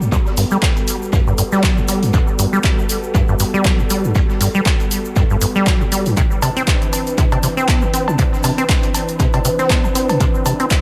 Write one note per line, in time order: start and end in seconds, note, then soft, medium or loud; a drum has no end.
0.00 0.10 G2 loud
0.00 6.13 G3 medium
0.00 6.13 B3 medium
0.00 6.13 F#4 medium
0.00 6.13 A4 medium
0.00 shaker soft
0.12 0.17 G2 loud
0.12 kick loud
0.12 tambourine medium
0.12 shaker soft
0.26 snare soft
0.26 shaker soft
0.37 0.45 G2 medium
0.37 open hi-hat loud
0.37 open hi-hat medium
0.37 shaker medium
0.51 0.58 G3 loud
0.51 shaker soft
0.62 kick loud
0.62 snare loud
0.62 clap loud
0.62 tambourine medium
0.62 shaker soft
0.76 closed hi-hat soft
0.76 shaker soft
0.88 open hi-hat loud
0.88 tambourine medium
0.88 shaker medium
1.02 shaker soft
1.13 1.21 G2 medium
1.13 kick loud
1.13 tambourine medium
1.13 shaker medium
1.27 1.33 G2 medium
1.27 shaker soft
1.38 1.43 G2 medium
1.38 open hi-hat loud
1.38 tambourine medium
1.38 shaker medium
1.52 1.65 G3 loud
1.52 snare soft
1.52 shaker soft
1.63 1.79 F#3 loud
1.63 kick loud
1.63 snare loud
1.63 clap loud
1.63 tambourine medium
1.63 shaker medium
1.77 1.81 G2 medium
1.77 shaker soft
1.88 2.04 G3 medium
1.88 open hi-hat loud
1.88 tambourine medium
1.88 shaker medium
2.03 2.12 G2 loud
2.03 open hi-hat medium
2.03 shaker soft
2.13 2.18 G2 loud
2.13 kick loud
2.13 tambourine medium
2.13 shaker medium
2.27 shaker soft
2.39 2.47 G2 medium
2.39 open hi-hat loud
2.39 tambourine medium
2.39 shaker medium
2.53 2.59 G3 loud
2.53 shaker soft
2.63 kick loud
2.63 snare loud
2.63 clap loud
2.63 tambourine medium
2.63 shaker soft
2.79 shaker soft
2.89 open hi-hat loud
2.89 tambourine medium
2.89 shaker loud
3.03 shaker soft
3.15 3.22 G2 medium
3.15 kick loud
3.15 tambourine medium
3.15 shaker medium
3.28 3.35 G2 medium
3.28 shaker soft
3.39 3.45 G2 medium
3.39 snare soft
3.39 open hi-hat loud
3.39 tambourine medium
3.39 shaker medium
3.54 3.67 G3 loud
3.54 shaker soft
3.65 3.81 F#3 loud
3.65 kick loud
3.65 snare loud
3.65 clap loud
3.65 tambourine medium
3.65 shaker medium
3.79 3.83 G2 medium
3.79 shaker soft
3.90 4.06 G3 medium
3.90 open hi-hat loud
3.90 tambourine medium
3.90 shaker medium
4.04 4.14 G2 loud
4.04 shaker soft
4.15 4.20 G2 loud
4.15 kick loud
4.15 tambourine medium
4.15 shaker soft
4.30 snare soft
4.30 shaker soft
4.41 4.48 G2 medium
4.41 open hi-hat loud
4.41 open hi-hat medium
4.41 shaker loud
4.55 4.61 G3 loud
4.55 shaker soft
4.65 kick loud
4.65 snare loud
4.65 clap loud
4.65 tambourine medium
4.65 shaker medium
4.80 closed hi-hat soft
4.80 shaker soft
4.91 open hi-hat loud
4.91 tambourine medium
4.91 shaker medium
5.05 shaker soft
5.16 5.24 G2 medium
5.16 kick loud
5.16 tambourine medium
5.16 shaker medium
5.30 5.37 G2 medium
5.30 shaker soft
5.41 5.46 G2 medium
5.41 open hi-hat loud
5.41 tambourine medium
5.41 shaker medium
5.55 5.68 G3 medium
5.55 snare soft
5.55 shaker soft
5.66 5.82 F#3 loud
5.66 kick loud
5.66 snare loud
5.66 clap loud
5.66 tambourine medium
5.66 shaker medium
5.81 5.85 G2 medium
5.81 shaker soft
5.92 6.07 G3 medium
5.92 open hi-hat loud
5.92 tambourine medium
5.92 shaker medium
6.06 6.15 G2 loud
6.06 open hi-hat medium
6.06 shaker soft
6.17 6.22 C3 loud
6.17 10.81 E3 medium
6.17 10.81 C4 medium
6.17 10.81 D4 medium
6.17 10.81 B4 medium
6.17 kick loud
6.17 closed hi-hat medium
6.17 tambourine medium
6.17 shaker soft
6.31 shaker soft
6.42 6.50 C3 medium
6.42 open hi-hat loud
6.42 tambourine medium
6.42 cowbell medium
6.42 shaker medium
6.57 6.63 C4 loud
6.57 closed hi-hat soft
6.57 shaker soft
6.67 kick loud
6.67 snare loud
6.67 clap loud
6.67 closed hi-hat medium
6.67 tambourine medium
6.67 shaker soft
6.82 closed hi-hat soft
6.82 shaker soft
6.93 open hi-hat loud
6.93 tambourine medium
6.93 cowbell soft
6.93 shaker medium
7.07 closed hi-hat soft
7.07 shaker soft
7.18 7.26 C3 medium
7.18 kick loud
7.18 closed hi-hat medium
7.18 tambourine medium
7.18 shaker soft
7.32 7.38 C3 medium
7.32 closed hi-hat soft
7.32 cowbell medium
7.32 shaker soft
7.43 7.48 C3 medium
7.43 snare soft
7.43 open hi-hat loud
7.43 tambourine medium
7.43 shaker medium
7.57 7.70 C4 loud
7.57 closed hi-hat soft
7.57 shaker soft
7.68 7.84 B3 loud
7.68 kick loud
7.68 snare loud
7.68 clap loud
7.68 closed hi-hat medium
7.68 tambourine medium
7.68 cowbell soft
7.68 shaker soft
7.81 7.86 C3 medium
7.81 shaker soft
7.93 8.09 C4 medium
7.93 open hi-hat loud
7.93 tambourine medium
7.93 shaker medium
8.08 8.17 C3 loud
8.08 cowbell medium
8.08 shaker soft
8.19 8.24 C3 loud
8.19 kick loud
8.19 closed hi-hat medium
8.19 tambourine medium
8.19 shaker soft
8.33 snare soft
8.33 shaker soft
8.43 8.52 C3 medium
8.43 open hi-hat medium
8.43 open hi-hat loud
8.43 cowbell medium
8.43 shaker medium
8.58 8.64 C4 loud
8.58 closed hi-hat medium
8.58 shaker soft
8.69 kick loud
8.69 snare loud
8.69 clap loud
8.69 closed hi-hat medium
8.69 tambourine medium
8.69 shaker soft
8.83 closed hi-hat soft
8.83 shaker soft
8.94 open hi-hat loud
8.94 tambourine medium
8.94 cowbell soft
8.94 shaker medium
9.08 closed hi-hat medium
9.08 shaker soft
9.20 9.27 C3 medium
9.20 kick loud
9.20 closed hi-hat medium
9.20 tambourine medium
9.20 shaker medium
9.33 9.40 C3 medium
9.33 closed hi-hat soft
9.33 cowbell medium
9.33 shaker soft
9.45 9.50 C3 medium
9.45 open hi-hat loud
9.45 tambourine medium
9.45 shaker medium
9.59 9.72 C4 loud
9.59 snare soft
9.59 closed hi-hat soft
9.59 shaker soft
9.70 9.86 B3 medium
9.70 kick loud
9.70 snare loud
9.70 clap loud
9.70 closed hi-hat medium
9.70 tambourine medium
9.70 cowbell soft
9.70 shaker soft
9.84 9.88 C3 medium
9.84 shaker soft
9.95 10.11 C4 medium
9.95 open hi-hat loud
9.95 tambourine medium
9.95 shaker medium
10.09 10.19 C3 loud
10.09 open hi-hat medium
10.09 cowbell medium
10.09 shaker soft
10.20 10.25 C3 loud
10.20 kick loud
10.20 closed hi-hat medium
10.20 tambourine medium
10.20 shaker soft
10.34 shaker soft
10.46 10.54 C3 medium
10.46 open hi-hat loud
10.46 tambourine medium
10.46 cowbell medium
10.46 shaker medium
10.60 10.66 C4 loud
10.60 closed hi-hat medium
10.60 shaker soft
10.70 kick loud
10.70 snare loud
10.70 clap loud
10.70 closed hi-hat medium
10.70 tambourine medium
10.70 shaker medium